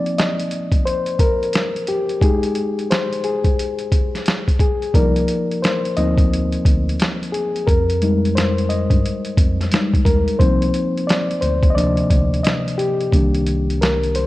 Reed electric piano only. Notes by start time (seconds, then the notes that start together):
Already playing: F3 A#3 C4 D#4 D5
0.18 D#5
0.86 C5
1.20 A#4
1.88 G4
2.22 G#3 D#4 G4 G#4
2.91 C5
3.24 G#4
4.61 G#4
4.95 F3 A#3 D#4 A#4 D5
5.62 C5
5.97 F3 A#3 C4 D#4 D#5
7.32 G#4
7.67 A#4
8.02 G3 G#3 D#4
8.35 C5
8.69 D#5
9.72 G3 G#3 D#4
10.05 A#4
10.39 F3 A#3 C4 D#4 C5
11.07 D5
11.41 C5
11.70 D#5
11.75 C3 F3 A#3 D4 D5
12.43 D#5
12.78 G4
13.13 D#3 A#3 D4
13.81 A#4
14.16 C5